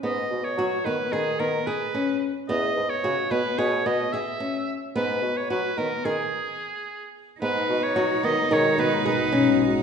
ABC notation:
X:1
M:9/8
L:1/16
Q:3/8=73
K:G#m
V:1 name="Oboe"
d3 c3 B2 G2 A2 B4 z2 | d3 c3 B2 c2 d2 e4 z2 | B3 c B2 A2 G8 z2 | B3 c3 d2 c2 B2 B4 z2 |]
V:2 name="Cello"
z16 z2 | z16 z2 | z16 z2 | D16- D2 |]
V:3 name="Nylon-string guitar"
B,4 F2 B,2 G2 B,2 G2 C4 | B,4 F2 B,2 G2 B,2 G2 C4 | B,4 F2 B,2 G2 z8 | B,4 F2 B,2 G2 B,2 G2 C4 |]
V:4 name="Ambient pad" clef=bass
z16 z2 | z16 z2 | z16 z2 | [B,,G,F]16- [B,,G,F]2 |]
V:5 name="Bassoon" clef=bass
G,,2 B,, z F, z D, z D,2 D,2 z6 | E,,2 G,, z C, z B,, z B,,2 B,,2 z6 | G,,2 B,, z F, z D, z D, z8 z | G,,2 B,, z F, z D, z D,2 D,2 z6 |]